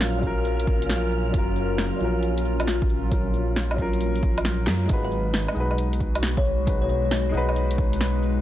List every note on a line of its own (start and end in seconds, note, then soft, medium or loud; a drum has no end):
0.00 0.22 A#1 medium
0.00 0.19 F#3 medium
0.00 4.89 F#3 medium
0.00 0.22 C#4 medium
0.00 5.77 C#4 medium
0.00 0.24 F4 medium
0.00 4.89 F4 loud
0.00 0.27 A#4 medium
0.00 4.89 A#4 medium
0.00 4.90 F5 medium
0.00 snare medium
0.00 closed hi-hat medium
0.19 1.29 F#3 loud
0.19 1.31 C#4 medium
0.23 1.33 A#1 medium
0.23 1.33 F4 medium
0.23 1.34 A#4 loud
0.23 kick medium
0.23 cabasa medium
0.45 closed hi-hat medium
0.60 closed hi-hat medium
0.67 kick loud
0.67 cabasa medium
0.82 closed hi-hat medium
0.90 snare medium
0.90 closed hi-hat soft
1.12 cabasa medium
1.30 1.91 F#1 loud
1.30 1.95 F#3 medium
1.30 1.97 C#4 medium
1.30 kick loud
1.30 closed hi-hat soft
1.35 1.99 F4 medium
1.35 2.01 A#4 loud
1.56 cabasa medium
1.78 snare medium
1.78 closed hi-hat medium
1.96 3.08 F#3 medium
1.96 3.09 C#4 medium
1.96 cabasa medium
2.01 3.78 A#1 medium
2.01 3.10 F4 medium
2.01 3.12 A#4 medium
2.23 closed hi-hat medium
2.38 closed hi-hat medium
2.45 cabasa medium
2.60 closed hi-hat medium
2.60 low woodblock medium
2.67 snare medium
2.67 closed hi-hat medium
2.82 kick loud
2.89 cabasa medium
3.09 3.26 F#3 medium
3.09 3.27 C#4 medium
3.09 3.27 F4 medium
3.09 3.28 A#4 medium
3.09 kick loud
3.09 closed hi-hat medium
3.34 cabasa medium
3.56 snare medium
3.56 closed hi-hat medium
3.71 4.85 F#3 loud
3.71 low woodblock medium
3.76 4.69 A#1 medium
3.76 4.87 C#4 medium
3.76 4.88 F4 loud
3.76 kick medium
3.76 cabasa medium
3.82 4.89 A#4 loud
3.93 closed hi-hat soft
4.01 closed hi-hat medium
4.16 closed hi-hat medium
4.23 kick loud
4.23 cabasa medium
4.38 closed hi-hat medium
4.38 low woodblock medium
4.45 snare loud
4.45 closed hi-hat medium
4.67 4.88 F#2 loud
4.67 snare medium
4.67 cabasa medium
4.85 5.50 G#3 medium
4.85 5.53 D#4 medium
4.89 5.47 G#1 medium
4.89 8.41 G#3 medium
4.89 5.55 F#4 medium
4.89 5.56 B4 loud
4.89 kick loud
4.89 closed hi-hat medium
5.05 5.27 B4 medium
5.11 8.41 F#4 medium
5.11 cabasa medium
5.34 snare loud
5.34 closed hi-hat medium
5.48 6.63 G#3 medium
5.48 8.41 D#4 medium
5.48 low woodblock medium
5.54 7.33 B1 medium
5.54 6.64 D#4 medium
5.54 6.66 F#4 medium
5.54 cabasa medium
5.60 6.67 B4 loud
5.71 low woodblock soft
5.78 closed hi-hat medium
5.93 closed hi-hat medium
6.00 kick medium
6.00 cabasa medium
6.15 closed hi-hat medium
6.15 low woodblock medium
6.23 snare loud
6.23 closed hi-hat medium
6.37 6.61 C#5 medium
6.37 kick loud
6.45 cabasa medium
6.65 6.82 G#3 medium
6.65 6.82 D#4 medium
6.65 6.83 F#4 medium
6.65 kick loud
6.65 closed hi-hat medium
6.69 6.84 B4 medium
6.77 8.41 B4 medium
6.82 6.87 C#5 medium
6.89 6.99 C#5 medium
6.89 cabasa medium
7.11 snare loud
7.11 closed hi-hat medium
7.29 8.39 G#3 loud
7.29 8.41 D#4 loud
7.34 8.41 B1 medium
7.34 8.41 F#4 medium
7.34 8.41 B4 loud
7.34 cabasa medium
7.49 low woodblock soft
7.56 closed hi-hat medium
7.71 closed hi-hat medium
7.78 kick loud
7.78 cabasa medium
7.93 closed hi-hat medium
8.01 snare loud
8.01 closed hi-hat medium
8.23 cabasa medium